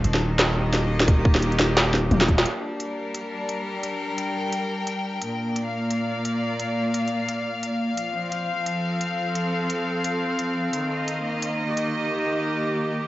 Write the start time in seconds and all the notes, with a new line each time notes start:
Already playing: D#3 A#3 C4 A4 F5
0.04 D#1, closed hi-hat
0.14 snare
0.39 snare, closed hi-hat
0.55 G4 D#5
0.73 snare, closed hi-hat
1.00 snare
1.08 D#1, kick, closed hi-hat
1.25 kick
1.35 snare
1.42 closed hi-hat
1.52 closed hi-hat
1.59 snare
1.77 snare, closed hi-hat
1.94 snare
2.11 D#1, closed hi-hat, high tom
2.21 snare
2.28 kick, closed hi-hat
2.38 snare
2.46 G3, closed hi-hat
2.57 D4
2.80 A#4, closed hi-hat
3.15 closed hi-hat
3.49 closed hi-hat
3.70 G5
3.84 closed hi-hat
4.18 closed hi-hat
4.53 closed hi-hat
4.87 closed hi-hat
5.22 A#2, closed hi-hat
5.38 A#3
5.51 D5
5.56 closed hi-hat
5.66 F5
5.91 closed hi-hat
6.25 closed hi-hat
6.60 closed hi-hat
6.94 closed hi-hat
7.08 closed hi-hat
7.28 closed hi-hat
7.63 closed hi-hat
7.97 F3, closed hi-hat
8.12 C4
8.32 closed hi-hat
8.58 A4
8.66 closed hi-hat
9.01 closed hi-hat
9.35 closed hi-hat
9.70 closed hi-hat
10.04 closed hi-hat
10.39 closed hi-hat
10.73 D#3, closed hi-hat
10.90 D#5
11.08 closed hi-hat
11.21 A#3
11.42 closed hi-hat
11.66 G4
11.77 closed hi-hat